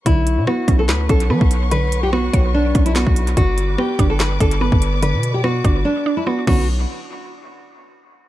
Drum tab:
CC |----------------|----------------|----------------|--------------x-|
HH |x-x---x---xx--x-|x-x---x---xxx-xx|x-x---x---xx--x-|x-x---x---------|
CP |--------x-------|------------x---|--------x-------|----------------|
SD |----r---o-------|----r-------o---|----r---o-------|----r-----------|
BD |o-----o---o--o--|------o---o--o--|o-----o---o--o--|------o-------o-|

CC |----------------|
HH |----------------|
CP |----------------|
SD |----------------|
BD |----------------|